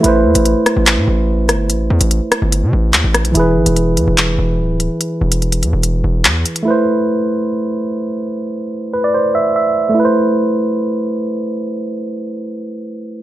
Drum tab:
HH |x--xx-x-x-----x-|x--xx-x-x---x-xx|x--xx-x-x-----x-|x--xxxx-x---x-xx|
CP |--------x-------|------------x---|--------x-------|------------x---|
SD |------r-------r-|------r-------r-|----------------|----------------|

HH |----------------|----------------|----------------|----------------|
CP |----------------|----------------|----------------|----------------|
SD |----------------|----------------|----------------|----------------|